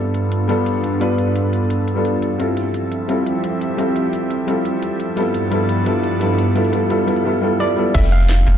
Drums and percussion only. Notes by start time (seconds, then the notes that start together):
0.14 closed hi-hat
0.32 closed hi-hat
0.49 closed hi-hat
0.66 closed hi-hat
0.84 closed hi-hat
1.01 closed hi-hat
1.18 closed hi-hat
1.36 closed hi-hat
1.53 closed hi-hat
1.70 closed hi-hat
1.88 closed hi-hat
2.05 closed hi-hat
2.22 closed hi-hat
2.40 closed hi-hat
2.57 closed hi-hat
2.74 closed hi-hat
2.92 closed hi-hat
3.09 closed hi-hat
3.27 closed hi-hat
3.44 closed hi-hat
3.61 closed hi-hat
3.79 closed hi-hat
3.96 closed hi-hat
4.13 closed hi-hat
4.31 closed hi-hat
4.48 closed hi-hat
4.65 closed hi-hat
4.83 closed hi-hat
5.00 closed hi-hat
5.17 closed hi-hat
5.34 closed hi-hat
5.52 closed hi-hat
5.69 closed hi-hat
5.86 closed hi-hat
6.04 closed hi-hat
6.21 closed hi-hat
6.38 closed hi-hat
6.56 closed hi-hat
6.64 closed hi-hat
6.73 closed hi-hat
6.90 closed hi-hat
7.08 closed hi-hat
7.16 closed hi-hat
7.94 kick, closed hi-hat, crash
8.03 shaker
8.12 closed hi-hat, shaker
8.29 snare, closed hi-hat
8.38 shaker
8.47 snare, closed hi-hat, shaker